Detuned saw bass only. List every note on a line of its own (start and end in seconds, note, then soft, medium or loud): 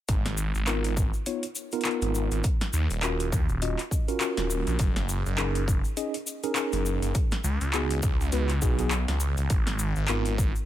0.09 0.52 G#1 medium
0.55 0.65 G#1 loud
0.67 1.11 G#1 medium
2.02 2.29 G#1 loud
2.31 2.42 G#1 loud
2.73 2.88 D#2 loud
2.90 3.30 D#1 loud
3.32 3.47 D#2 medium
3.49 3.76 D#1 loud
4.38 4.64 D#1 loud
4.67 4.77 A#1 loud
4.80 5.23 F#1 medium
5.26 5.36 F#1 loud
5.38 5.82 F#1 medium
6.73 6.99 F#1 loud
7.02 7.13 F#1 loud
7.44 7.58 C#2 loud
7.61 8.01 C#2 loud
8.03 8.17 C#2 medium
8.20 8.30 C#2 loud
8.33 8.60 C#2 loud
8.62 9.05 B1 medium
9.08 9.35 C#2 medium
9.37 9.48 C#2 medium
9.50 9.94 G#1 loud
9.97 10.07 G#1 loud
10.09 10.53 G#1 medium